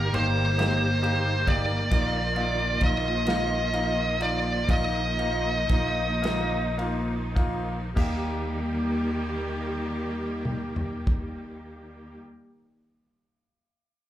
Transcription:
Already playing: G1 D#3 G3 A#3 G4 A#4
0.13 G1 A#3 D#4 G4 C5, ride
0.57 A#3 D#4 G4, snare, ride
1.02 A#3 D#4 G4, ride
1.46 A#3 D#4 G4 D5, kick, ride
1.91 A#1 F3 A#3 D#4 F4, kick, ride
2.35 A#3 D#4 F4, ride
2.81 A#1 A#3 D#4 F4 D#5, kick, ride
3.26 A#3 D#4 F4, snare, ride
3.73 A#3 D#4 F4, ride
4.20 A#3 D#4 F4 D5, ride
4.68 A#1 A#3 D#4 F4 D#5, kick, ride
5.18 A#3 D#4 F4, ride
5.69 A#1 A#3 D#4 F4, kick, ride
6.21 A#3 D#4 F4, snare, ride
6.77 A#3 D#4 F4, ride
7.35 A#3 D#4 F4, kick, ride
7.95 D#2 D#3 G3 A#3 D#4 G4, kick, crash
10.45 mid tom
10.76 floor tom
11.07 kick

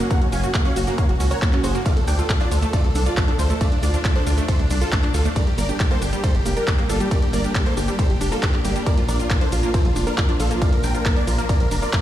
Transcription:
Already playing: F#3 A#3 C#4
0.10 A#3 A#4 F#5, kick, closed hi-hat, shaker
0.21 F#4, closed hi-hat
0.32 F#1 C#4 F5 G#5, open hi-hat, shaker
0.43 F#4, closed hi-hat, shaker
0.54 A#3 F#4, kick, clap, closed hi-hat, shaker
0.65 C#4 C#5 F5, closed hi-hat
0.76 F#1 F#4, open hi-hat, shaker
0.87 A#3 F#4, closed hi-hat, shaker
0.98 A#3 C#5 F5, kick, closed hi-hat, shaker
1.09 F#1 F#4, closed hi-hat
1.20 C#2 C#4 F#4, open hi-hat, shaker
1.31 F#4 A#4 C#5, open hi-hat, shaker
1.42 A#3 F#4, kick, clap, closed hi-hat, shaker
1.53 C#4 F#4, clap, closed hi-hat
1.63 F#1 F#4 G#4 C5, open hi-hat, shaker
1.75 A#3 F#4, closed hi-hat, shaker
1.85 F3 A3 D4 D5 F5, kick, closed hi-hat, ride, shaker
1.97 A4, closed hi-hat
2.07 D2 D4 D5 G5, open hi-hat, shaker
2.18 F4 A4, closed hi-hat, shaker
2.29 A3 A4, kick, clap, closed hi-hat, ride, shaker
2.40 D4 F4 D5, closed hi-hat
2.51 D2 F4 A4, open hi-hat, shaker
2.62 A3 A4, closed hi-hat, shaker
2.73 A3 F4 D5, kick, closed hi-hat, ride, shaker
2.84 D2 A4, closed hi-hat
2.95 C2 D4 A4, open hi-hat, shaker
3.06 F4 D5, closed hi-hat, shaker
3.17 A3 A4, kick, clap, closed hi-hat, ride, shaker
3.28 D4 A4, closed hi-hat
3.39 D2 F4 A4 C5, open hi-hat, shaker
3.50 A3 A4, closed hi-hat, shaker
3.61 A3 F4 D5, kick, closed hi-hat, ride, shaker
3.72 D4, closed hi-hat
3.83 D2 D4 F4 D5, open hi-hat, shaker
3.94 D4 F4, closed hi-hat, shaker
4.05 A3 D4, kick, clap, closed hi-hat, ride, shaker
4.16 D4 A4 C5, closed hi-hat
4.27 D2 D4 F4, open hi-hat, shaker
4.38 A3 D4, closed hi-hat, shaker
4.48 A3 A4 C5, kick, closed hi-hat, ride, shaker
4.59 D2 D4, closed hi-hat
4.70 C2 D4, open hi-hat, shaker
4.81 F4 A4, open hi-hat, shaker
4.92 A3 D4, kick, clap, closed hi-hat, ride, shaker
5.03 D4, clap, closed hi-hat
5.14 D2 F4 A4, open hi-hat, shaker
5.25 A3 D4, closed hi-hat, shaker
5.36 G3 A#3 D4 A#4 D5, kick, closed hi-hat, ride, shaker
5.47 G4, closed hi-hat
5.58 G1 A#3 A#4 D5, open hi-hat, shaker
5.69 D4 G4, closed hi-hat, shaker
5.80 G3 G4, kick, clap, closed hi-hat, ride, shaker
5.91 A#3 A4 C5, closed hi-hat
6.02 G1 D4 G4, open hi-hat, shaker
6.13 G3 G4, closed hi-hat, shaker
6.24 G3 A4 C5, kick, closed hi-hat, ride, shaker
6.35 G1 G4, closed hi-hat
6.45 F1 A#3 G4, open hi-hat, shaker
6.56 D4 G4 A#4, closed hi-hat, shaker
6.67 G3 G4, kick, clap, closed hi-hat, ride, shaker
6.78 A#3 G4, closed hi-hat
6.89 G1 D4 F4 A4, open hi-hat, shaker
7.00 G3 G4, closed hi-hat, shaker
7.11 G3 A#4 D5, kick, closed hi-hat, ride, shaker
7.22 G4, closed hi-hat
7.33 G1 A#3 A#4 D5, open hi-hat, shaker
7.44 D4 G4, closed hi-hat, shaker
7.55 G3 G4, kick, clap, closed hi-hat, ride, shaker
7.66 A#3 A4 C5, closed hi-hat
7.77 G1 D4 G4, open hi-hat, shaker
7.88 G3 G4, closed hi-hat, shaker
7.99 G3 A4 C5, kick, closed hi-hat, ride, shaker
8.09 G1 G4, closed hi-hat
8.21 F1 D4 G4, open hi-hat, shaker
8.32 F4 A4 A#4, open hi-hat, shaker
8.43 D4 G4, kick, clap, closed hi-hat, ride, shaker
8.53 G4 D5, clap, closed hi-hat
8.65 G1 G3 A#3 G4, open hi-hat, shaker
8.76 G3 G4, closed hi-hat, shaker
8.86 F3 A#3 A#4 D5, kick, closed hi-hat, ride, shaker
8.98 F4, closed hi-hat
9.08 A#1 D4 A#4 D5, open hi-hat, shaker
9.19 F4, closed hi-hat, shaker
9.30 A#3 F4, kick, clap, closed hi-hat, ride, shaker
9.41 D4 A4 C5, closed hi-hat
9.52 A#1 F4, open hi-hat, shaker
9.63 A#3 F4, closed hi-hat, shaker
9.74 A#3 A4 C5, kick, closed hi-hat, ride, shaker
9.85 A#1 F4, closed hi-hat
9.96 F1 D4 F4, open hi-hat, shaker
10.07 D4 F4 A#4, closed hi-hat, shaker
10.18 A#3 F4, kick, clap, closed hi-hat, ride, shaker
10.29 D4 F4, closed hi-hat
10.40 A#1 F4 A4, open hi-hat, shaker
10.51 A#3 F4, closed hi-hat, shaker
10.62 A#3 D5 F5, kick, closed hi-hat, ride, shaker
10.73 A#4, closed hi-hat
10.84 A#1 D4 A#4 G5, open hi-hat, shaker
10.95 F4 A#4, closed hi-hat, shaker
11.05 A#3 A#4, kick, clap, closed hi-hat, ride, shaker
11.16 D4 A#4 D5, closed hi-hat
11.27 A#1 F4 A#4, open hi-hat, shaker
11.38 A#3 A#4, closed hi-hat, shaker
11.49 A#3 A#4 D5, kick, closed hi-hat, ride, shaker
11.60 A#1 A#4, closed hi-hat
11.71 F1 D4 A#4, open hi-hat, shaker
11.82 F4 A#4 D5, open hi-hat, shaker
11.93 A#3 A#4, kick, clap, closed hi-hat, ride, shaker

